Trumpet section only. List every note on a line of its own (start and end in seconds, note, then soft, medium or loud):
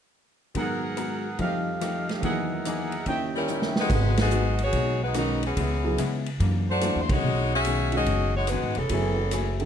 0.56 1.39 G#4 medium
0.56 1.40 A#4 medium
0.56 1.39 F#5 medium
1.40 2.23 G4 medium
1.40 2.23 A4 medium
1.40 2.22 D#5 medium
1.40 2.23 F5 medium
2.23 3.06 G#4 medium
2.23 3.06 A#4 medium
2.23 3.06 D#5 medium
2.23 3.06 E5 medium
2.23 3.06 F#5 medium
2.64 2.97 G#5 soft
2.86 3.15 A#5 soft
3.07 3.90 C#5 medium
3.07 3.90 D#5 medium
3.07 3.90 E5 medium
3.07 3.90 G5 medium